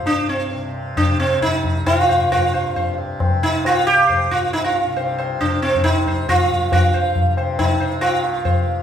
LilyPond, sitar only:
\new Staff \with { instrumentName = "Sitar" } { \time 5/4 \tempo 4 = 136 << { r1 r8 c''8 | r8 c''8 c''8 r2 r8 c''8 r8 | r4 c''8 c''8 c''8 r8 c''8 c''8 c''8 r8 | r8 c''8 r8 c''8 r8 c''8 r4 c''8 r8 | } \\ { d'8 c'4 r8 d'8 c'8 ees'4 f'4 | f'4. r4 ees'8 f'8 g'4 f'8 | ees'16 f'4. r16 d'8 c'8 ees'4 f'4 | f'4. r8 ees'4 f'2 | } >> }